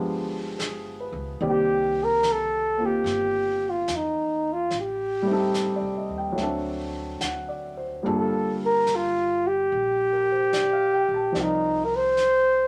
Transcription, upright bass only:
0.00 1.10 G1 medium
1.12 1.39 C#2 medium
1.41 3.02 C2 medium
3.04 3.84 G1 medium
3.88 4.67 E2 medium
4.72 5.78 A1 medium
5.81 6.08 C2 soft
6.10 6.36 D#2 soft
6.38 7.17 D2 medium
7.21 8.00 D2 soft
8.06 9.67 G1 medium
9.72 11.04 A#1 medium
11.08 11.34 A#1 medium
11.35 12.68 C2 medium

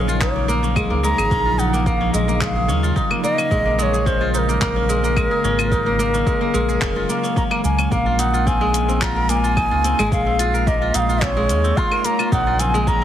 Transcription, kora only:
0.00 0.75 G#3 loud
0.00 0.35 A#3 medium
0.00 0.62 C#4 medium
0.00 1.17 G#4 medium
0.00 0.25 A#4 medium
0.08 1.45 F4 medium
0.21 1.58 D#4 medium
0.36 0.48 A#3 medium
0.48 0.90 A#3 loud
0.63 1.31 C#4 medium
0.76 1.02 G#3 medium
0.90 1.73 A#3 medium
1.03 2.12 G#3 medium
1.18 2.55 G#4 medium
1.31 2.00 C#4 loud
1.46 2.83 F4 medium
1.59 2.95 D#4 medium
1.73 1.86 A#3 medium
1.86 2.28 A#3 medium
2.01 2.68 C#4 medium
2.13 2.40 G#3 medium
2.28 3.10 A#3 medium
2.41 3.50 G#3 loud
2.56 3.92 G#4 medium
2.68 3.38 C#4 loud
2.83 4.20 F4 medium
2.96 4.33 D#4 medium
3.11 3.23 A#3 medium
3.24 3.65 A#3 loud
3.38 4.06 C#4 medium
3.51 3.77 G#3 medium
3.66 4.48 A#3 medium
3.79 4.88 G#3 loud
3.93 5.30 G#4 medium
4.06 4.76 C#4 medium
4.21 5.58 F4 medium
4.34 5.71 D#4 medium
4.49 4.61 A#3 medium
4.61 5.03 A#3 loud
4.76 5.44 C#4 medium
4.89 5.15 G#3 medium
5.04 5.86 A#3 medium
5.16 6.25 G#3 loud
5.31 6.68 G#4 medium
5.44 6.13 C#4 loud
5.59 6.96 F4 medium
5.72 7.34 D#4 medium
5.86 5.99 A#3 medium
5.99 6.41 A#3 loud
6.14 6.81 C#4 medium
6.27 6.53 G#3 medium
6.41 7.09 A#3 medium
6.54 7.97 G#3 medium
6.69 8.05 G#4 medium
6.81 7.23 C#4 loud
6.96 8.06 F4 medium
7.09 7.51 A#3 medium
7.23 7.36 C#4 medium
7.36 7.78 C#4 medium
7.51 7.64 A#3 loud
7.64 7.91 A#3 medium
7.79 8.53 C#4 medium
7.91 9.29 A#3 medium
8.06 8.33 F4 medium
8.19 9.56 D#4 medium
8.34 9.01 F4 medium
8.47 8.80 C4 medium
8.61 9.98 G#3 loud
8.74 8.95 C#4 medium
8.88 9.84 C4 medium
9.02 9.44 F4 loud
9.16 10.44 A#4 medium
9.29 10.67 A#3 medium
9.44 9.71 F4 medium
9.57 10.94 D#4 medium
9.71 10.39 F4 medium
9.84 10.18 C4 medium
9.99 11.35 G#3 loud
10.12 10.33 C#4 medium
10.27 11.22 C4 medium
10.39 10.81 F4 loud
10.54 11.81 A#4 medium
10.67 12.04 A#3 medium
10.82 11.09 F4 medium
10.95 12.32 D#4 medium
11.09 11.77 F4 medium
11.22 11.56 C4 medium
11.37 12.37 G#3 medium
11.50 11.70 C#4 medium
11.64 12.59 C4 medium
11.77 12.19 F4 loud
11.92 13.04 A#4 medium
12.05 13.04 A#3 medium
12.19 12.46 F4 medium
12.32 13.04 D#4 medium
12.47 13.04 F4 medium
12.60 12.93 C4 medium
12.74 13.04 G#3 loud
12.87 13.04 C#4 medium

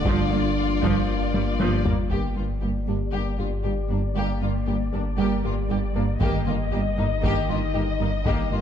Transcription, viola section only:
0.05 0.29 F3 medium
0.31 0.39 A#3 soft
0.82 1.06 F3 medium
1.34 1.42 G3 soft
1.60 1.83 F3 medium
1.85 1.93 A#3 medium
2.10 2.34 A#3 soft
2.37 2.45 A#3 soft
2.62 2.70 A#3 soft
2.88 2.96 A#3 soft
3.13 3.37 A#3 soft
3.39 3.47 A#3 soft
3.65 3.73 A#3 soft
3.90 3.98 A#3 soft
4.16 4.40 A#3 medium
4.41 4.49 A#3 soft
4.67 4.75 A#3 soft
4.93 5.01 A#3 soft
5.18 5.42 A#3 medium
5.44 5.52 A#3 soft
5.70 5.78 A#3 soft
5.95 6.03 A#3 medium
6.21 6.45 A#3 medium
6.47 6.55 A#3 soft
6.72 6.80 A#3 soft
6.97 7.05 A#3 medium
7.23 7.47 A#3 medium
7.49 7.57 A#3 medium
7.74 7.82 A#3 soft
8.00 8.08 A#3 soft
8.26 8.50 A#3 medium
8.52 8.60 A#3 soft

